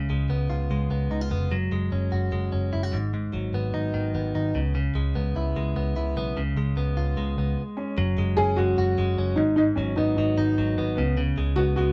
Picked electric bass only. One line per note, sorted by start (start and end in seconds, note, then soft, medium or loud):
0.10 0.26 C#2 medium
0.29 0.46 C#2 medium
0.50 0.67 C#2 medium
0.70 0.87 C#2 medium
0.90 1.07 C#2 loud
1.11 1.27 C#2 medium
1.31 1.48 F1 medium
1.51 1.68 F#1 medium
1.71 1.88 F#1 medium
1.92 2.09 F#1 loud
2.13 2.29 F#1 medium
2.33 2.49 F#1 medium
2.53 2.70 F#1 medium
2.74 2.90 F#1 medium
2.94 3.27 G#1 medium
3.34 3.51 G#1 medium
3.54 3.70 G#1 loud
3.74 3.90 G#1 medium
3.94 4.11 G#1 medium
4.15 4.31 G#1 medium
4.35 4.51 G#1 medium
4.55 4.88 C#2 medium
4.95 5.12 C#2 medium
5.16 5.32 C#2 medium
5.36 5.52 C#2 loud
5.56 5.73 C#2 medium
5.76 5.92 C#2 medium
5.96 6.13 C#2 medium
6.17 6.33 B1 medium
6.37 6.53 C#2 medium
6.56 6.73 C#2 medium
6.76 6.93 C#2 medium
6.96 7.13 C#2 medium
7.17 7.34 C#2 medium
7.38 7.54 C#2 medium
7.98 8.14 F#1 medium
8.18 8.34 F#1 loud
8.38 8.54 F#1 loud
8.57 8.74 F#1 loud
8.78 8.94 F#1 loud
8.98 9.14 F#1 loud
9.17 9.34 F#1 medium
9.38 9.71 G#1 loud
9.77 9.94 G#1 loud
9.97 10.14 G#1 loud
10.18 10.34 G#1 loud
10.38 10.54 G#1 loud
10.58 10.75 G#1 loud
10.78 10.94 G#1 loud
10.98 11.31 C#2 loud
11.38 11.54 C#2 loud
11.57 11.74 C#2 loud
11.78 11.92 C#2 loud